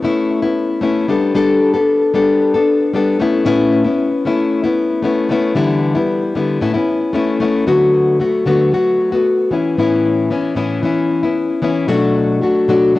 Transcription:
0.03 A3 B3 C#4 E4
0.43 B3 C#4 E4
0.81 A3 B3 C#4 E4
1.08 G3 B3 D4 A4
1.35 G3 B3 D4 A4
1.74 B3 D4 A4
2.14 G3 B3 D4 A4
2.54 B3 D4 A4
2.93 G3 B3 D4 A4
3.19 A3 B3 C#4 E4
3.45 A2 A3 B3 C#4 E4
3.85 B3 C#4 E4
4.25 A3 B3 C#4 E4
4.64 B3 C#4 E4
5.02 A3 B3 C#4 E4
5.29 A3 B3 C#4 E4
5.55 D3 E3 G3 B3 E4
5.95 G3 B3 E4
6.35 D3 G3 B3 E4
6.61 A2 A3 B3 C#4 E4
6.74 B3 C#4 E4
7.13 A3 B3 C#4 E4
7.40 A3 B3 C#4 E4
7.67 D3 F#3 A3 B3 F#4
8.19 F#3 A3 B3 F#4
8.46 D3 F#3 A3 B3 F#4
8.72 F#3 A3 B3 F#4
9.12 A3 B3 F#4
9.51 E3 B3 C#4 E4
9.77 A2 E3 B3 C#4 E4
10.30 E3 B3 C#4 E4
10.55 A2 E3 B3 C#4 E4
10.83 E3 B3 C#4 E4
11.23 B3 C#4 E4
11.62 E3 B3 C#4 E4
11.88 B2 F#3 A3 D4 F#4
12.41 F#3 A3 D4 F#4
12.68 B2 F#3 A3 D4 F#4
12.95 F#3 A3

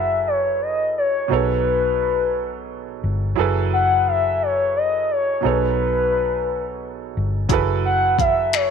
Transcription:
Already playing: F#1 F#3 E4 G#4 A4 B4 E5
0.27 C#5
0.62 D#5
0.97 C#5
1.28 B1 B2 F#3 D#4 G#4 B4
1.32 A4 C#5
3.04 G1
3.35 F#1 F#3 E4 G#4 A4
3.40 B4
3.73 F#5
4.08 E5
4.42 C#5
4.77 D#5
5.11 C#5
5.41 B2 F#3 D#4 G#4 B4
5.45 B1 A4 C#5
7.17 G1
7.49 F#1 F#3 E4 G#4 A4, kick, closed hi-hat
7.54 B4
7.85 F#5
8.19 E5, kick, closed hi-hat
8.53 C#5, finger snap, closed hi-hat

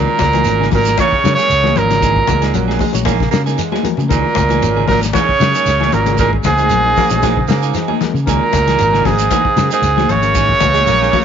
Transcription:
Already playing: A#2 D#3 G#3 C#4 D#4 F#4 A#4
0.19 C#2, kick, snare, closed hi-hat, high conga, shekere
0.33 E3 A#3 D#4 G#4, closed hi-hat, high conga, shekere
0.44 G#1 G#3 C#4 F#4 A#4, closed hi-hat, shekere
0.60 C#3 A#3 D#4 G#4, snare
0.71 G#1 A#2 A#4, kick, open hi-hat, high conga, low conga, shekere
0.85 snare, closed hi-hat, shekere
0.97 C#3 E3 A#3 D#4 G#4 C#5, kick, closed hi-hat, high conga, shekere
1.12 kick
1.24 C#3 F#3 G#3 C#4 F#4 A#4, snare, closed hi-hat, shekere
1.35 C#3 G#4 C#5, closed hi-hat, shekere
1.39 A#3, muted clean electric guitar stroke, snare
1.50 C#2, closed hi-hat, shekere
1.63 E3 A#3 D#4 G#4, snare, high conga
1.76 G#1 A#2 A#4, closed hi-hat, low conga, shekere
1.90 C#3 G#3 C#4 F#4 A#4, snare, closed hi-hat, shekere
2.02 E3 A#3 D#4 G#4, kick, closed hi-hat, shekere
2.16 kick
2.27 C#2 E3 G#3, kick, closed hi-hat, high conga, shekere
2.42 A#3 D#4 G#4, snare, closed hi-hat, shekere
2.53 A#1 F#3 G#3 C#4 F#4 A#4, closed hi-hat, shekere
2.68 A#3 D#4 G#4, snare
2.79 G#3, kick, open hi-hat, high conga, low conga, shekere
2.93 A#1 E3 G#3 C#4 F#4 C#5, closed hi-hat, shekere
3.05 E3 A#3 D#4 G#4, kick, closed hi-hat, high conga, shekere
3.20 C#3, kick, snare
3.31 C#3 G#3 A#3 C#4 F#4 A#4, snare, closed hi-hat, shekere
3.46 A#3 D#4 G#4, snare, shekere
3.58 E3 G#3, closed hi-hat, shekere
3.72 A#3 D#4 G#4, snare, high conga
3.83 E3 G#3 C#4 F#4 A#4, muted fingered electric bass stroke, closed hi-hat, low conga, shekere
3.97 C#3, high conga, shekere
4.09 C#2 A#2 D#3 E3 G#3 A#3 C#4 D#4 F#4 G#4 A#4, kick, closed hi-hat, shekere
4.35 C#2, kick, closed hi-hat, high conga, shekere
4.49 E3 A#3 D#4 G#4, closed hi-hat, high conga, shekere
4.61 G#1 G#3 C#4 F#4 C#5, closed hi-hat, shekere
4.76 C#3 D#4 G#4, muted clean electric guitar stroke
4.88 G#1 A#2 A#4, kick, snare, open hi-hat, high conga, low conga, shekere
5.03 snare, closed hi-hat, shekere
5.13 C#3 E3 A#3 D#4 G#4 C#5, kick, snare, closed hi-hat, high conga, shekere
5.29 kick
5.38 C#3 F#3 G#3 C#4 F#4 A#4, snare, closed hi-hat, shekere
5.55 A#3 D#4 G#4, closed hi-hat, shekere
5.66 C#2, snare, closed hi-hat, shekere
5.80 E3 A#3 D#4 G#4, snare, high conga
5.92 G#1 A#2 A#4, closed hi-hat, low conga, shekere
6.05 C#3 G#3 C#4 F#4 G#4, closed hi-hat, high conga, shekere
6.18 A#2 E3 A#3 D#4 G#4 A#4, kick, closed hi-hat, shekere
6.33 kick
6.44 C#2 G#2 E3 G#4, kick, snare, closed hi-hat, high conga, shekere
6.57 A#3 D#4 G#4, closed hi-hat, high conga, shekere
6.70 A#1 F#3 G#3 C#4 F#4 A#4, closed hi-hat, shekere
6.86 A#3 D#4
6.96 A#3, kick, open hi-hat, high conga, low conga, shekere
7.10 A#1 E3 G#3 C#4 F#4 C#5, closed hi-hat, shekere
7.23 E3 G#3 A#3 D#4 G#4, kick, snare, closed hi-hat, high conga, shekere
7.37 C#3, kick
7.48 C#3 G#3 A#3 C#4 F#4 G#4, snare, closed hi-hat, shekere
7.62 A#3 D#4 G#4, shekere
7.74 E3 G#3, snare, closed hi-hat, shekere
7.88 A#3 D#4 G#4, high conga
8.00 E3 G#3 C#4 F#4 A#4, muted fingered electric bass stroke, snare, closed hi-hat, low conga, shekere
8.14 C#3, shekere
8.27 C#2 A#2 D#3 G#3 A#3 C#4 D#4 F#4 G#4 A#4, muted clean electric guitar stroke, kick, closed hi-hat, shekere
8.53 C#2, kick, snare, closed hi-hat, high conga, shekere
8.67 E3 A#3 D#4 G#4, snare, closed hi-hat, shekere
8.78 G#1 G#3 C#4 F#4 A#4, closed hi-hat, shekere
8.93 C#3 A#3 D#4 G#4, snare
9.05 G#1 G#2 G#4, kick, snare, open hi-hat, high conga, low conga, shekere
9.18 closed hi-hat, shekere
9.31 E3 A#3 D#4 G#4, kick, closed hi-hat, high conga, shekere
9.45 kick
9.56 C#3 F#3 G#3 C#4 F#4 A#4, snare, closed hi-hat, shekere
9.71 G#2 A#3 D#4 G#4, closed hi-hat, shekere
9.82 C#2, snare, closed hi-hat, shekere
9.97 E3 A#3 D#4 G#4, snare, high conga
10.08 G#1 C#3 C#5, closed hi-hat, low conga, shekere
10.22 G#3 C#4 F#4 A#4, muted clean electric guitar stroke, closed hi-hat, shekere
10.35 E3 A#3 D#4 G#4, kick, closed hi-hat, shekere
10.49 kick
10.60 C#2 E3, kick, closed hi-hat, high conga, shekere
10.74 G#3 A#3 D#4 G#4, closed hi-hat, high conga, shekere
10.85 A#1 F#3 G#3 A#3 C#4 F#4 G#4, closed hi-hat, shekere
11.02 A#3 D#4 G#4, snare
11.13 kick, open hi-hat, high conga, low conga, shekere

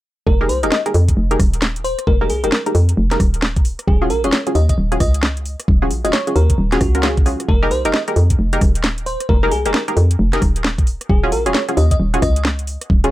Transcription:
0.26 F1 A#4, kick
0.41 D#4 G4 G#4 A#4
0.49 C2 C5, open hi-hat
0.63 F1 D#4 G4 G#4 A#4 D#5, closed hi-hat
0.72 D#5, snare
0.86 D#4 G4 G#4 A#4, closed hi-hat
0.94 F2, open hi-hat
1.08 kick, closed hi-hat
1.17 F1
1.31 D#4 G4 G#4 A#4, closed hi-hat
1.40 D#1, kick, cross-stick, open hi-hat
1.54 closed hi-hat
1.62 snare
1.76 closed hi-hat
1.84 C5, open hi-hat
1.99 cross-stick, closed hi-hat
2.07 F1 A#4, kick
2.21 D#4 G4 G#4 A#4
2.30 C2 G#4, open hi-hat
2.44 F1 D#4 G4 G#4 A#4, closed hi-hat
2.52 A#4, snare
2.66 D#4 G4 G#4 A#4, closed hi-hat
2.75 F2, open hi-hat
2.89 closed hi-hat
2.97 F1
3.11 D#4 G4 G#4 A#4, snare, closed hi-hat
3.20 D#1, kick, cross-stick, open hi-hat
3.34 closed hi-hat
3.42 snare
3.56 kick, closed hi-hat
3.65 open hi-hat
3.79 cross-stick, closed hi-hat
3.87 D#1 G#4, kick
4.02 C#4 F4 F#4 G#4
4.10 A#1 A#4, open hi-hat
4.24 D#1 C#4 F4 F#4 G#4 C#5, closed hi-hat
4.33 C#5, snare
4.47 C#4 F4 F#4 G#4, closed hi-hat
4.55 D#2 D#5, open hi-hat
4.69 D#5, kick, closed hi-hat
4.78 D#1
4.92 C#4 F4 F#4 G#4, closed hi-hat
5.00 C#2 D#5, kick, cross-stick, open hi-hat
5.14 closed hi-hat
5.23 snare
5.37 closed hi-hat
5.46 open hi-hat
5.60 cross-stick, closed hi-hat
5.68 D#1, kick
5.82 C#4 F4 F#4 G#4
5.91 A#1, open hi-hat
6.04 D#1 C#4 F4 F#4 G#4 D#5, closed hi-hat
6.13 C#5, snare
6.27 C#4 F4 F#4 G#4, closed hi-hat
6.36 D#2 A#4, open hi-hat
6.50 kick, closed hi-hat
6.58 D#1
6.72 C#4 F4 F#4 G#4, snare, closed hi-hat
6.81 C#2, kick, cross-stick, open hi-hat
6.95 C#4 F4 F#4 A#4, closed hi-hat
7.03 C#4 F4 F#4 G#4, snare
7.17 kick, closed hi-hat
7.26 C#4 F4 F#4 G#4, open hi-hat
7.40 cross-stick, closed hi-hat
7.48 F1 A#4, kick
7.62 D#4 G4 G#4 A#4
7.71 C2 C5, open hi-hat
7.85 F1 D#4 G4 G#4 A#4 D#5, closed hi-hat
7.94 D#5, snare
8.08 D#4 G4 G#4 A#4, closed hi-hat
8.16 F2, open hi-hat
8.30 kick, closed hi-hat
8.39 F1
8.53 D#4 G4 G#4 A#4, closed hi-hat
8.61 D#1, kick, cross-stick, open hi-hat
8.75 closed hi-hat
8.84 snare
8.98 closed hi-hat
9.06 C5, open hi-hat
9.20 cross-stick, closed hi-hat
9.29 F1 A#4, kick
9.43 D#4 G4 G#4 A#4
9.51 C2 G#4, open hi-hat
9.66 F1 D#4 G4 G#4 A#4, closed hi-hat
9.74 A#4, snare
9.88 D#4 G4 G#4 A#4, closed hi-hat
9.97 F2, open hi-hat
10.11 closed hi-hat
10.19 F1
10.33 D#4 G4 G#4 A#4, snare, closed hi-hat
10.42 D#1, kick, cross-stick, open hi-hat
10.56 closed hi-hat
10.64 snare
10.78 kick, closed hi-hat
10.87 open hi-hat
11.01 cross-stick, closed hi-hat
11.09 D#1 G#4, kick
11.23 C#4 F4 F#4 G#4
11.32 A#1 A#4, open hi-hat
11.46 D#1 C#4 F4 F#4 G#4 C#5, closed hi-hat
11.55 C#5, snare
11.69 C#4 F4 F#4 G#4, closed hi-hat
11.77 D#2 D#5, open hi-hat
11.91 D#5, kick, closed hi-hat
12.00 D#1
12.14 C#4 F4 F#4 G#4, closed hi-hat
12.22 C#2 D#5, kick, cross-stick, open hi-hat
12.36 closed hi-hat
12.45 snare
12.59 closed hi-hat
12.67 open hi-hat
12.81 cross-stick, closed hi-hat
12.90 D#1, kick
13.04 C#4 F4 F#4 G#4, closed hi-hat

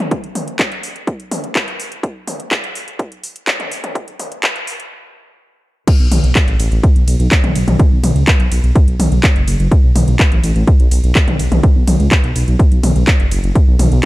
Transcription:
0.11 kick, closed hi-hat
0.24 closed hi-hat
0.35 open hi-hat, mid tom
0.48 closed hi-hat
0.59 kick, clap, closed hi-hat
0.72 closed hi-hat
0.83 open hi-hat
0.96 closed hi-hat
1.07 kick, closed hi-hat
1.20 closed hi-hat
1.31 open hi-hat, mid tom
1.44 closed hi-hat
1.55 kick, clap, closed hi-hat
1.68 closed hi-hat
1.80 open hi-hat
1.92 closed hi-hat
2.03 kick, closed hi-hat
2.27 open hi-hat, mid tom
2.40 closed hi-hat
2.51 kick, clap, closed hi-hat
2.64 closed hi-hat
2.75 open hi-hat
2.88 closed hi-hat
2.99 kick, closed hi-hat
3.12 closed hi-hat
3.24 open hi-hat
3.36 closed hi-hat
3.47 kick, clap, closed hi-hat
3.60 closed hi-hat, mid tom
3.72 open hi-hat
3.84 closed hi-hat, mid tom
3.95 kick, closed hi-hat
4.08 closed hi-hat
4.19 open hi-hat, mid tom
4.32 closed hi-hat
4.43 kick, clap, closed hi-hat
4.56 closed hi-hat
4.67 open hi-hat
4.80 closed hi-hat
5.87 kick, closed hi-hat, crash
6.00 B1
6.11 B1, open hi-hat, mid tom, ride
6.24 B1, closed hi-hat
6.35 kick, clap, closed hi-hat
6.48 A1, closed hi-hat
6.59 A1, open hi-hat, ride
6.72 A1, closed hi-hat
6.83 kick, closed hi-hat
6.96 B1, closed hi-hat
7.07 B1, open hi-hat, ride
7.20 B1, closed hi-hat
7.31 kick, clap, closed hi-hat
7.44 B1, closed hi-hat, mid tom
7.55 B1, open hi-hat, ride
7.68 B1, closed hi-hat, mid tom
7.79 kick, closed hi-hat
7.92 B1
8.03 B1, open hi-hat, mid tom, ride
8.15 C#2, closed hi-hat
8.28 kick, clap, closed hi-hat
8.40 B1, closed hi-hat
8.51 B1, open hi-hat, ride
8.63 B1, closed hi-hat
8.76 kick, closed hi-hat
8.88 B1, closed hi-hat
9.00 B1, open hi-hat, mid tom, ride
9.12 B1, closed hi-hat
9.23 kick, clap, closed hi-hat
9.36 F#1, closed hi-hat
9.47 F#1, open hi-hat, ride
9.60 F#1, closed hi-hat
9.71 kick, closed hi-hat
9.84 B1
9.95 B1, open hi-hat, mid tom, ride
10.08 B1, closed hi-hat
10.19 kick, clap, closed hi-hat
10.32 A1, closed hi-hat
10.43 A1, open hi-hat, ride
10.56 A1, closed hi-hat
10.67 kick, closed hi-hat
10.80 B1, closed hi-hat
10.91 B1, open hi-hat, ride
11.04 B1, closed hi-hat
11.15 kick, clap, closed hi-hat
11.28 B1, closed hi-hat, mid tom
11.39 B1, open hi-hat, ride
11.52 B1, closed hi-hat, mid tom
11.63 kick, closed hi-hat
11.76 B1
11.87 B1, open hi-hat, mid tom, ride
12.00 C#2, closed hi-hat
12.11 kick, clap, closed hi-hat
12.24 B1, closed hi-hat
12.36 B1, open hi-hat, ride
12.48 B1, closed hi-hat
12.59 kick, closed hi-hat
12.72 B1, closed hi-hat
12.83 B1, open hi-hat, mid tom, ride
12.96 B1, closed hi-hat
13.07 kick, clap, closed hi-hat
13.20 F#1, closed hi-hat
13.31 F#1, open hi-hat, ride
13.44 F#1, closed hi-hat
13.55 kick, closed hi-hat
13.68 B1
13.79 B1, open hi-hat, mid tom, ride
13.92 B1, closed hi-hat

